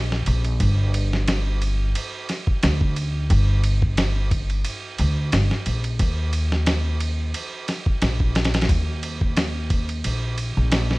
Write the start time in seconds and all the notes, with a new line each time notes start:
Already playing: A#1
0.12 snare
0.26 A#1, ride
0.44 ride
0.60 G1, kick, ride
0.94 ride
1.13 snare
1.28 snare, ride
1.62 ride
1.95 ride
2.29 snare, ride
2.47 kick
2.63 D2, snare, ride
2.81 kick
2.96 ride
3.30 G1, kick, ride
3.64 ride
3.82 kick
3.97 snare, ride
4.31 kick, ride
4.50 ride
4.65 ride
4.99 D2, ride
5.32 G1, snare, ride
5.51 snare
5.66 A#1, ride
5.84 ride
5.99 D#2, kick, ride
6.33 ride
6.52 snare
6.66 snare, ride
7.00 ride
7.34 ride
7.68 snare, ride
7.86 kick
8.02 A#1, snare, ride
8.20 kick
8.35 snare, ride
8.45 snare, ride
8.54 snare, ride
8.61 snare, ride
8.69 D#2, kick, ride
9.03 ride
9.21 kick
9.37 snare, ride
9.70 kick, ride
9.89 ride
10.04 A#1, ride
10.38 ride
10.57 A#1
10.72 snare, ride
10.91 snare